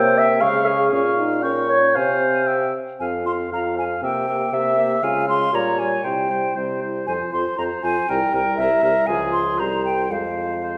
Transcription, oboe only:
Already playing: E5
0.41 F5
0.93 F5
1.43 G5
1.95 F5
2.48 E5
3.01 F5
3.28 F5
3.52 F5
3.77 F5
4.03 E5
4.28 E5
4.53 E5
4.78 E5
5.03 F5
5.28 F5
5.53 C#5
5.80 C#5
6.04 C5
6.30 C5
6.56 C5
6.81 C5
7.08 C5
7.33 C5
7.59 C5
7.84 C5
8.09 A#4
8.35 A#4
8.60 A#4
8.84 A#4
9.08 G#4
9.58 C5
10.11 C5
10.63 C5

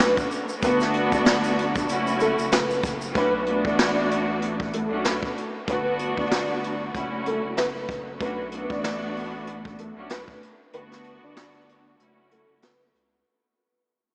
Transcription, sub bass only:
Already playing: B1
0.63 G1
1.12 G1
1.89 F#1
2.39 F#1
2.52 F#1
2.83 F#1
3.15 B1
3.65 A1
4.91 B1
5.68 G1
6.17 G1
6.95 F#1
7.44 F#1
7.57 F#1
7.89 F#1
8.21 B1
8.70 A1
9.96 B1
10.73 G1
11.23 G1
12.00 F#1
12.49 F#1
12.63 F#1
12.94 C#2

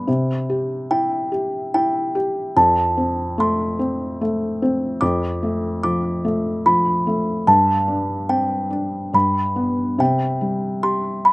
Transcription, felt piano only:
0.07 C3
0.50 G4
0.91 E4
1.32 G4
1.74 E4
2.15 G4
2.57 F2
2.97 C4
3.38 A3
3.79 C4
4.21 A3
4.62 C4
5.02 F2
5.43 A3
5.84 F3
6.25 A3
6.66 F3
7.07 A3
7.47 G2
7.88 D4
8.29 C4
8.70 D4
9.13 G2
9.56 B3
9.98 C3
10.41 G3
10.83 G4

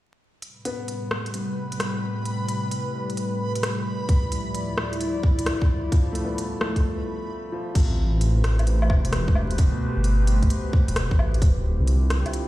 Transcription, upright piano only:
0.65 B3
5.92 F3
6.12 A3
6.25 B3
6.60 A3
7.52 F3
7.75 C3
9.59 B2

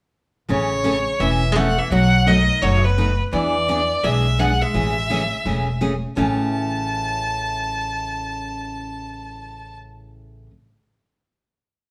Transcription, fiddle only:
0.50 C#5
1.21 E5
1.53 E5 F#5
1.79 E5
1.92 F#5
2.27 D#5
2.62 C#5
2.84 B4
3.32 D5
4.04 E5
4.39 F#5
4.62 E5
6.17 A5

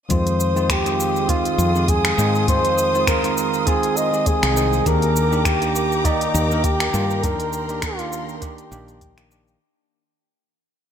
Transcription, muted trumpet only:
0.11 C5
0.71 G4
1.30 F4
1.89 G#4
2.49 C5
3.08 A#4
3.67 G#4
3.97 D#5
4.27 G#4
4.87 A#4
5.45 G4
6.05 D#4
6.65 G4
7.24 A#4
7.83 F4
8.42 G4

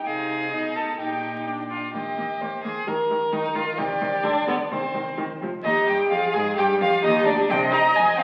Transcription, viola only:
0.07 D#4
0.52 D#4
0.99 D#4
1.47 D4
1.94 A#3
2.17 A#3
2.41 A#3
2.64 A#3
2.87 D#3
3.10 D#3
3.32 D#3
3.55 D#3
3.78 D#3
4.01 D#3
4.24 D3
4.47 D3
4.71 D#3
4.95 D#3
5.17 D#3
5.42 F3
5.65 G4
6.11 G#4
6.57 G4
7.48 D#5

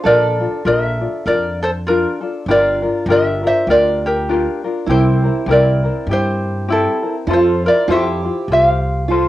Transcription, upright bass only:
0.05 A#1
0.65 A#1
1.26 F2
2.46 G1
3.06 G1
3.67 D2
4.87 C2
5.46 C2
6.07 G2
7.27 F2
7.88 F2
8.48 C2

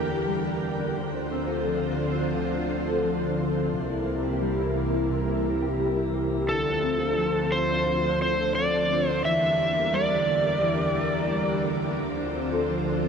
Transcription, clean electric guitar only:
Already playing: E3 G3 A#3 D4
0.10 G4
0.27 G3
0.45 D4
0.62 A#3
0.79 D4
0.97 D3
1.14 D4
1.31 C4
1.48 A4
1.65 F3
1.83 D4
2.00 C4
2.18 D4
2.35 D3
2.52 D4
2.69 C4
2.86 A4
3.03 F3
3.20 D4
3.37 C4
3.55 D4
3.72 C3
3.89 E4
4.06 A#3
4.23 G4
4.41 G3
4.57 E4
4.75 A#3
4.93 E4
5.10 C3
5.27 E4
5.44 A#3
5.61 G4
5.78 G3
5.96 E4
6.13 A#3
6.30 E4
6.48 D3
6.65 D4
6.82 C4
6.99 A4
7.17 F3
7.34 D4
7.51 C4
7.68 D4
7.85 D3
8.03 D4
8.20 C4
8.37 A4
8.55 F3
8.72 D4
8.89 C4
9.06 D4
9.24 E3
9.41 D4
9.58 A#3
9.75 A#4
9.92 G3
10.10 D4
10.27 A#3
10.44 D4
10.62 E3
10.79 D4
10.96 A#3
11.13 A#4
11.31 G3
11.48 D4
11.66 A#3
11.83 D4
12.00 D3
12.17 D4
12.34 C4
12.51 A4
12.69 F3
12.86 D4
13.03 C4

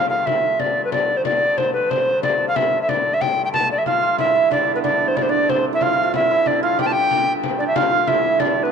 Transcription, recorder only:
0.09 F5
0.26 E5
0.60 D5
0.85 B4
0.93 D5
1.17 C5
1.25 D5
1.57 C5
1.73 B4
1.90 C5
2.23 D5
2.48 F5
2.56 E5
2.82 E5
2.89 D5
3.14 E5
3.21 G5
3.45 G5
3.53 A5
3.71 D5
3.78 E5
3.86 F5
4.19 E5
4.52 D5
4.75 B4
4.84 D5
5.08 C5
5.16 D5
5.22 C5
5.29 D5
5.49 C5
5.74 E5
5.82 F5
6.15 E5
6.47 D5
6.63 F5
6.80 G5
6.86 A5
6.92 G5
7.58 D5
7.67 E5
7.76 F5
8.08 E5
8.40 D5
8.63 B4

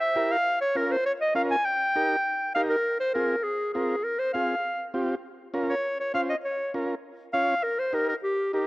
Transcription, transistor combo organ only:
0.15 E4 G4 A#4
0.75 C#4 F4 A#4
1.35 C#4 F4 A#4
1.96 D#4 G4 A#4
2.56 D#4 G4 A#4
3.15 C4 F4 G#4
3.75 C4 F4 A#4
4.34 C4 F4 G#4
4.94 C4 F4 G4
5.54 C#4 F4 A#4
6.14 C#4 F4 C5
6.74 C#4 F4 A#4
7.34 C#4 F4 C#5
7.93 D#4 G4 A#4
8.53 D#4 G4 A#4

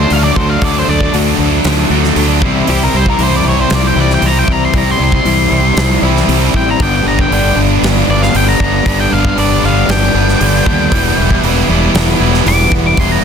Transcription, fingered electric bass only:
0.11 D2
0.36 D2
0.62 D2
0.88 D2
1.13 D2
1.39 D2
1.64 D2
1.90 D2
2.16 D2
2.42 C2
2.68 C2
2.93 C2
3.19 C2
3.45 C2
3.71 C2
3.96 C2
4.22 C2
4.74 C2
4.99 C2
5.25 C2
5.51 C2
5.76 C2
6.02 C2
6.28 C2
6.54 A1
6.80 G1
7.05 G1
7.31 G1
7.57 G1
7.82 G1
8.08 G1
8.35 G1
8.60 G1
8.86 G1
9.12 G1
9.38 G1
9.63 G1
9.88 G1
10.14 G1
10.41 G1
10.66 D#2
10.92 E1
11.17 E1
11.43 E1
11.69 E1
11.94 E1
12.20 E1
12.46 E1
12.72 E1
12.98 E1

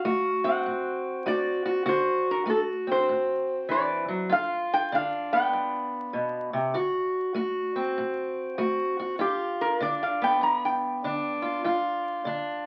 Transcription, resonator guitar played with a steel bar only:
Already playing: F5
0.44 F#5
1.28 D5
1.89 C5
2.31 A#4
2.50 A4
2.92 C5
3.71 D5
4.32 F5
4.74 G5
4.95 F5
5.33 G5
9.21 G4
9.61 A#4
9.82 D5
10.03 F5
10.24 G5
10.43 A#5
10.65 G5

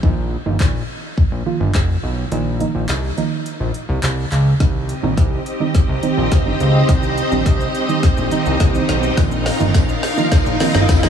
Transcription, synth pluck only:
0.03 D#3 F3 A#3 D#4
0.46 D#3 F3 A#3 D#4
1.46 D#3 F3 A#3 F4
2.31 D#3 F3 A#3 D#4
2.60 D#3 F3 A#3 D#4
3.17 D#3 F3 A#3 D#4
4.60 D#3 G3 C4 D#4
5.03 D#3 G3 C4 D#4
5.60 D#3 G3 C4 D#4
6.03 D#3 G3 C4 D#4
6.46 D#3 G3 C4 D#4
6.89 D#3 G3 C4 D#4
7.31 D#3 G3 C4 D4
7.88 D#3 G3 C4 D#4
8.31 D#3 G3 C4 D#4
8.74 D#3 G3 C4 D#4
9.17 D#3 F3 A#3 D#4
9.60 D#3 F3 A#3 D#4
10.17 D#3 F3 A#3 D#4
10.60 D#3 F3 A#3 C4
11.03 D#3 F3 A#3 D#4

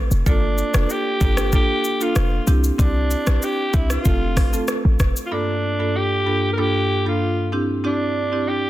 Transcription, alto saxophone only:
0.28 D4
0.91 G4
1.55 G4
2.03 F4
2.81 D4
3.44 G4
3.75 E4
3.92 F4
5.26 F4
5.33 D4
5.96 G4
6.53 A#4
6.60 G4
7.08 F4
7.86 D4
8.48 G4

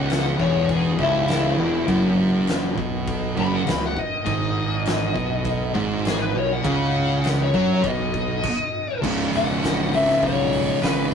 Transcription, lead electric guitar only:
Already playing: F#5
0.40 C#5
0.71 G#4
1.01 E4
3.40 B5
3.54 F#5
3.69 B5
3.86 F#5
3.99 D#5
6.08 G#4
6.22 B4
6.38 C#5
6.53 F#5
7.42 C#5
7.73 C#5
7.87 D#5
9.36 F#5
9.95 E5
10.23 C#5
10.83 B4

